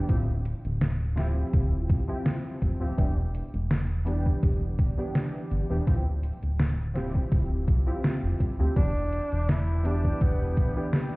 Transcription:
0.08 0.53 D1 loud
0.08 0.26 F3 medium
0.08 0.26 C4 medium
0.08 0.27 E4 medium
0.08 0.27 G4 medium
0.08 kick loud
0.08 closed hi-hat medium
0.45 closed hi-hat medium
0.65 1.44 D1 loud
0.65 closed hi-hat soft
0.81 snare loud
0.81 closed hi-hat medium
1.16 2.04 F3 medium
1.16 2.04 C4 medium
1.16 2.05 E4 medium
1.16 2.05 G4 loud
1.16 snare medium
1.16 closed hi-hat medium
1.53 1.91 D1 medium
1.53 kick loud
1.53 closed hi-hat medium
1.90 2.02 C2 medium
1.90 kick loud
1.90 closed hi-hat medium
2.08 2.76 F3 medium
2.08 2.76 C4 medium
2.08 2.77 E4 medium
2.08 2.77 G4 loud
2.26 snare loud
2.26 closed hi-hat medium
2.62 2.74 F1 medium
2.62 kick medium
2.62 closed hi-hat medium
2.80 2.92 D1 medium
2.80 2.94 F3 medium
2.80 2.94 C4 medium
2.80 2.94 E4 medium
2.80 2.94 G4 loud
2.97 3.42 E1 loud
2.97 3.15 E3 medium
2.97 3.15 B3 medium
2.97 3.15 D4 medium
2.97 3.16 G4 medium
2.97 kick loud
2.97 closed hi-hat medium
3.35 closed hi-hat medium
3.54 4.33 E1 loud
3.54 closed hi-hat soft
3.71 snare loud
3.71 closed hi-hat medium
4.05 4.93 E3 medium
4.05 4.93 B3 medium
4.05 4.94 D4 medium
4.05 4.94 G4 loud
4.05 closed hi-hat medium
4.26 kick medium
4.43 4.81 E1 medium
4.43 kick loud
4.43 closed hi-hat medium
4.79 4.91 D1 medium
4.79 kick medium
4.79 closed hi-hat medium
4.97 5.66 E3 medium
4.97 5.66 B3 medium
4.97 5.66 D4 medium
4.97 5.66 G4 loud
5.15 snare loud
5.15 closed hi-hat medium
5.51 5.64 G1 medium
5.51 closed hi-hat medium
5.70 5.81 E1 medium
5.70 5.83 E3 medium
5.70 5.83 B3 medium
5.70 5.83 D4 medium
5.70 5.84 G4 loud
5.87 6.32 D1 loud
5.87 6.04 F3 medium
5.87 6.05 C4 medium
5.87 6.05 E4 medium
5.87 6.05 G4 medium
5.87 kick loud
5.87 closed hi-hat medium
6.23 closed hi-hat medium
6.43 7.22 D1 loud
6.43 closed hi-hat soft
6.60 snare loud
6.60 closed hi-hat medium
6.94 7.82 F3 medium
6.94 7.82 C4 medium
6.94 7.83 E4 medium
6.94 7.83 G4 loud
6.94 snare medium
6.94 closed hi-hat medium
7.15 kick medium
7.32 7.69 D1 medium
7.32 kick loud
7.32 closed hi-hat medium
7.68 7.80 C2 medium
7.68 kick loud
7.68 closed hi-hat medium
7.86 8.54 F3 medium
7.86 8.55 C4 medium
7.86 8.55 E4 medium
7.86 8.55 G4 loud
8.04 snare loud
8.04 closed hi-hat medium
8.23 8.34 F1 loud
8.40 8.53 C2 loud
8.40 kick medium
8.40 closed hi-hat medium
8.59 8.70 D2 medium
8.59 8.72 F3 medium
8.59 8.72 C4 medium
8.59 8.73 E4 medium
8.59 8.73 G4 loud
8.75 9.21 E1 loud
8.75 8.93 E3 medium
8.75 8.94 B3 medium
8.75 8.94 D4 medium
8.75 9.51 D4 loud
8.75 11.16 E4 medium
8.75 8.94 G4 medium
8.75 11.16 B4 medium
8.75 11.16 D5 medium
8.75 11.16 G5 medium
8.75 kick loud
8.75 closed hi-hat medium
9.13 closed hi-hat medium
9.32 10.11 E1 loud
9.32 closed hi-hat soft
9.49 9.87 E4 loud
9.49 snare loud
9.49 closed hi-hat medium
9.83 10.71 E3 medium
9.83 10.71 B3 medium
9.83 10.72 D4 medium
9.83 10.23 D4 loud
9.83 10.73 G4 loud
9.83 closed hi-hat medium
10.04 kick medium
10.21 10.59 E1 medium
10.21 10.94 B3 medium
10.21 kick loud
10.21 closed hi-hat medium
10.57 10.70 D1 medium
10.57 kick loud
10.57 closed hi-hat medium
10.76 11.16 E3 medium
10.76 11.16 B3 medium
10.76 11.16 D4 medium
10.76 11.16 G4 loud
10.93 snare loud
10.93 closed hi-hat medium

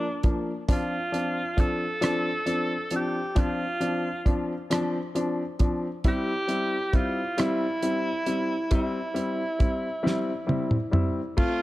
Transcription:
0.00 0.36 D4 medium
0.23 0.50 F3 medium
0.23 0.50 A#3 soft
0.23 0.50 D4 medium
0.23 kick medium
0.23 closed hi-hat soft
0.68 0.95 F3 medium
0.68 0.95 C4 medium
0.68 0.95 D4 medium
0.68 1.62 F4 medium
0.68 kick medium
0.68 closed hi-hat medium
1.12 1.39 F3 medium
1.12 1.39 C4 soft
1.12 1.39 D4 medium
1.12 closed hi-hat soft
1.57 1.84 F3 medium
1.57 1.84 C4 medium
1.57 1.84 D4 medium
1.57 2.93 A4 loud
1.57 kick medium
1.57 closed hi-hat soft
2.01 2.28 F3 medium
2.01 2.28 C4 medium
2.01 2.28 D4 medium
2.01 cross-stick medium
2.01 closed hi-hat medium
2.46 2.73 F3 medium
2.46 2.73 C4 medium
2.46 2.73 D4 medium
2.46 closed hi-hat soft
2.91 3.18 F3 medium
2.91 3.18 C4 soft
2.91 3.18 D4 medium
2.91 closed hi-hat soft
2.96 3.41 G4 medium
3.35 3.62 F3 medium
3.35 3.62 C4 medium
3.35 3.62 D4 medium
3.35 4.38 F4 medium
3.35 kick medium
3.35 closed hi-hat medium
3.80 4.07 F3 medium
3.80 4.07 C4 medium
3.80 4.07 D4 medium
3.80 closed hi-hat soft
4.26 4.52 F3 medium
4.26 4.52 C4 medium
4.26 4.52 D4 medium
4.26 kick medium
4.26 closed hi-hat soft
4.70 4.96 F3 medium
4.70 4.96 C4 medium
4.70 4.97 D4 medium
4.70 cross-stick medium
4.70 closed hi-hat medium
5.15 5.41 F3 medium
5.15 5.41 C4 soft
5.15 5.41 D4 medium
5.15 closed hi-hat soft
5.59 5.85 F3 medium
5.59 5.86 C4 medium
5.59 5.86 D4 medium
5.59 kick medium
5.59 closed hi-hat soft
6.04 6.30 G3 medium
6.04 6.30 C4 medium
6.04 6.30 E4 medium
6.04 6.97 G4 loud
6.04 kick medium
6.04 closed hi-hat medium
6.48 6.74 G3 medium
6.48 6.74 C4 medium
6.48 6.75 E4 medium
6.48 closed hi-hat soft
6.93 7.19 G3 medium
6.93 7.19 C4 medium
6.93 7.19 E4 medium
6.93 7.42 F4 medium
6.93 kick medium
6.93 closed hi-hat soft
7.37 7.64 G3 medium
7.37 7.64 C4 medium
7.37 7.64 E4 medium
7.37 8.73 E4 medium
7.37 cross-stick medium
7.37 closed hi-hat medium
7.82 8.08 G3 medium
7.82 8.09 C4 medium
7.82 8.09 E4 medium
7.82 closed hi-hat soft
8.26 8.53 G3 medium
8.26 8.53 C4 medium
8.26 8.53 E4 medium
8.26 closed hi-hat soft
8.71 8.97 G3 medium
8.71 8.97 C4 medium
8.71 8.97 E4 medium
8.71 10.91 E4 medium
8.71 kick medium
8.71 closed hi-hat medium
9.14 9.41 G3 medium
9.14 9.41 C4 medium
9.14 9.41 E4 medium
9.14 closed hi-hat soft
9.59 9.86 G3 medium
9.59 9.86 C4 medium
9.59 9.86 E4 medium
9.59 kick medium
9.59 closed hi-hat soft
10.03 10.30 G3 medium
10.03 10.30 C4 medium
10.03 10.30 E4 medium
10.03 snare soft
10.47 10.74 G3 medium
10.47 10.74 C4 medium
10.47 10.74 E4 medium
10.47 high tom medium
10.71 mid tom medium
10.91 11.18 G3 medium
10.91 11.19 C4 medium
10.91 11.19 E4 medium
10.91 mid tom medium
11.37 11.62 A3 medium
11.37 11.62 C4 medium
11.37 11.62 F4 medium
11.37 kick medium
11.37 crash medium

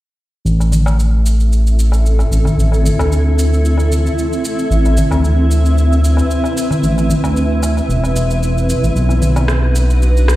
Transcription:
0.45 2.24 A1 medium
0.45 8.92 C4 medium
0.45 8.92 E4 medium
0.45 4.67 A4 medium
0.45 8.92 E5 medium
0.45 shaker soft
0.60 darbuka tek soft
0.60 shaker soft
0.72 darbuka dum medium
0.72 shaker medium
0.86 darbuka ka medium
0.86 darbuka tek medium
0.86 shaker soft
1.00 shaker soft
1.26 shaker medium
1.40 shaker soft
1.52 shaker soft
1.67 shaker soft
1.79 shaker medium
1.92 darbuka ka medium
1.92 shaker soft
2.06 shaker soft
2.19 darbuka ka medium
2.19 shaker soft
2.31 2.48 A1 medium
2.31 shaker medium
2.45 darbuka ka soft
2.45 darbuka dum medium
2.45 shaker soft
2.58 2.90 A1 medium
2.58 shaker soft
2.72 darbuka tek soft
2.72 shaker soft
2.84 darbuka dum medium
2.84 shaker medium
2.98 4.09 D2 medium
2.98 darbuka ka medium
2.98 darbuka tek medium
2.98 shaker soft
3.12 shaker soft
3.39 shaker medium
3.53 shaker soft
3.65 shaker soft
3.78 darbuka ka soft
3.78 shaker soft
3.92 shaker medium
4.06 shaker soft
4.18 shaker soft
4.33 shaker soft
4.45 shaker medium
4.59 shaker soft
4.70 5.02 A1 medium
4.70 10.36 B4 medium
4.70 shaker soft
4.85 darbuka tek soft
4.85 shaker soft
4.97 darbuka dum medium
4.97 shaker medium
5.11 6.22 D2 medium
5.11 darbuka ka medium
5.11 darbuka tek medium
5.11 shaker soft
5.24 shaker soft
5.51 shaker medium
5.66 shaker soft
5.78 shaker soft
5.92 shaker soft
6.05 shaker medium
6.17 darbuka ka medium
6.17 shaker soft
6.31 shaker soft
6.44 darbuka ka medium
6.44 shaker soft
6.58 shaker medium
6.71 darbuka ka soft
6.71 darbuka dum medium
6.71 shaker soft
6.83 7.15 A1 medium
6.83 shaker soft
6.98 darbuka tek soft
6.98 shaker soft
7.09 darbuka dum medium
7.09 shaker medium
7.23 7.81 D2 medium
7.23 darbuka ka medium
7.23 darbuka tek medium
7.23 shaker soft
7.37 shaker soft
7.63 darbuka tek medium
7.63 shaker medium
7.77 darbuka tek soft
7.77 shaker soft
7.88 8.14 E1 medium
7.88 shaker soft
8.04 darbuka ka medium
8.04 shaker soft
8.15 8.74 E1 medium
8.15 shaker medium
8.31 shaker soft
8.43 shaker soft
8.58 shaker soft
8.70 shaker medium
8.82 8.90 A1 medium
8.82 shaker soft
8.95 10.36 B1 medium
8.95 10.36 D4 medium
8.95 10.36 F#4 medium
8.95 10.36 F#5 medium
8.95 shaker soft
9.09 darbuka tek soft
9.09 shaker soft
9.22 darbuka dum medium
9.22 shaker medium
9.36 darbuka ka medium
9.36 darbuka tek medium
9.36 shaker soft
9.48 cross-stick medium
9.48 shaker soft
9.76 shaker medium
9.90 shaker soft
10.02 shaker soft
10.17 shaker soft
10.28 cross-stick medium
10.28 shaker medium

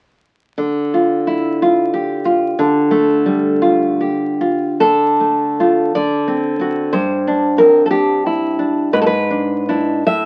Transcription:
0.58 2.54 D3 soft
0.94 1.61 F4 soft
1.27 1.93 E4 soft
1.62 2.24 F4 soft
1.94 2.90 G4 soft
2.25 3.24 F4 soft
2.59 4.77 D3 medium
2.91 4.00 A3 soft
3.26 4.42 G3 soft
3.62 4.40 F4 soft
4.01 4.80 G4 soft
4.41 4.81 F4 soft
4.80 5.93 D3 soft
4.80 5.92 A4 medium
5.20 5.59 A3 soft
5.60 5.93 A3 soft
5.60 5.93 F4 soft
5.95 6.92 D3 soft
5.95 6.90 D5 medium
6.28 6.58 C4 soft
6.59 6.90 C4 soft
6.59 6.91 F#4 soft
6.93 8.89 G2 soft
6.93 7.57 C5 medium
7.27 7.89 D4 soft
7.58 8.60 C4 soft
7.58 7.85 A#4 medium
7.86 7.90 A4 soft
7.90 8.58 D4 soft
7.90 8.26 G4 medium
8.26 8.93 E4 soft
8.59 8.93 D4 soft
8.93 10.02 G#2 soft
8.93 9.01 B4 medium
9.02 9.06 A4 medium
9.06 10.01 B4 medium
9.30 9.67 D4 soft
9.69 10.03 D4 soft
9.69 10.03 E4 soft
10.07 10.25 A2 soft
10.07 10.25 E5 medium

